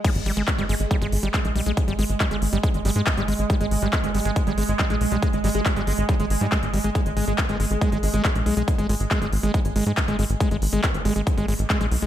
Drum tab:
CC |x---------------|----------------|----------------|----------------|
HH |xxoxxxoxxxoxxxox|xxoxxxoxxxoxxxox|xxoxxxoxxxoxxxox|xxoxxxoxxxoxxxox|
CP |----x-------x---|----x-------x---|----x-------x---|----x-------x---|
BD |o---o---o---o---|o---o---o---o---|o---o---o---o---|o---o---o---o---|

CC |----------------|----------------|----------------|
HH |xxoxxxoxxxoxxxox|xxoxxxoxxxoxxxox|xxoxxxoxxxoxxxox|
CP |----x-------x---|----x-------x---|----x-------x---|
BD |o---o---o---o---|o---o---o---o---|o---o---o---o---|